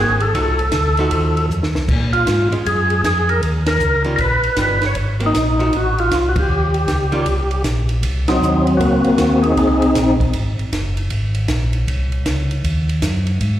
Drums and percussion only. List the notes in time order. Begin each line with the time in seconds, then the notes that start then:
0.20 ride
0.34 kick, ride
0.59 ride
0.72 kick, snare, hi-hat pedal, ride
0.97 ride
1.11 kick, ride
1.37 ride
1.51 hi-hat pedal
1.63 snare
1.75 snare
1.89 kick, crash
2.13 ride
2.27 kick, snare, hi-hat pedal, ride
2.52 ride
2.65 kick, ride
2.90 ride
3.04 kick, snare, hi-hat pedal, ride
3.29 ride
3.42 kick, ride
3.66 snare, ride
3.80 hi-hat pedal
4.04 ride
4.18 kick, ride
4.43 ride
4.57 kick, snare, hi-hat pedal, ride
4.82 snare, ride
4.95 kick, ride
5.20 ride
5.34 kick, snare, hi-hat pedal, ride
5.60 ride
5.73 kick, ride
5.98 ride
6.11 kick, snare, hi-hat pedal, ride
6.36 kick, ride
6.74 ride
6.88 kick, snare, hi-hat pedal, ride
7.12 ride
7.26 kick, ride
7.51 ride
7.64 kick, snare, hi-hat pedal, ride
7.89 ride
8.03 kick, ride
8.28 snare, ride
8.43 hi-hat pedal
8.67 ride
8.80 kick, ride
9.04 ride
9.18 kick, snare, hi-hat pedal, ride
9.44 ride
9.57 kick, ride
9.82 ride
9.95 kick, snare, hi-hat pedal, ride
10.20 kick, ride
10.33 kick, ride
10.59 ride
10.73 kick, snare, hi-hat pedal, ride
10.97 ride
11.10 kick, ride
11.35 ride
11.48 kick, snare, hi-hat pedal, ride
11.73 ride
11.88 kick, ride
12.12 ride
12.26 kick, snare, hi-hat pedal, ride
12.51 ride
12.64 kick, ride
12.89 ride
13.02 kick, snare, hi-hat pedal, ride
13.27 ride
13.41 kick, ride